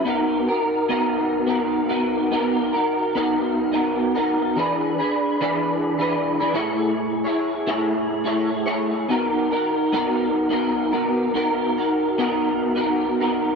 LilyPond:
\new Staff \with { instrumentName = "Clean electric guitar" } { \time 4/4 \key b \major \tempo 4 = 106 <b dis' fis' ais'>8. <dis' fis' ais'>8. <b dis' fis' ais'>4 <b dis' fis' ais'>8. <b dis' fis' ais'>8. | <b dis' fis' ais'>8. <dis' fis' ais'>8. <b dis' fis' ais'>4 <b dis' fis' ais'>8. <b dis' fis' ais'>8. | <e d' gis' b'>8. <d' gis' b'>8. <e d' gis' b'>4 <e d' gis' b'>8. <e d' gis' b'>16 <a e' gis' cis''>8~ | <a e' gis' cis''>8. <e' gis' cis''>8. <a e' gis' cis''>4 <a e' gis' cis''>8. <a e' gis' cis''>8. |
<b dis' fis' ais'>8. <dis' fis' ais'>8. <b dis' fis' ais'>4 <b dis' fis' ais'>8. <b dis' fis' ais'>8. | <b dis' fis' ais'>8. <dis' fis' ais'>8. <b dis' fis' ais'>4 <b dis' fis' ais'>8. <b dis' fis' ais'>8. | }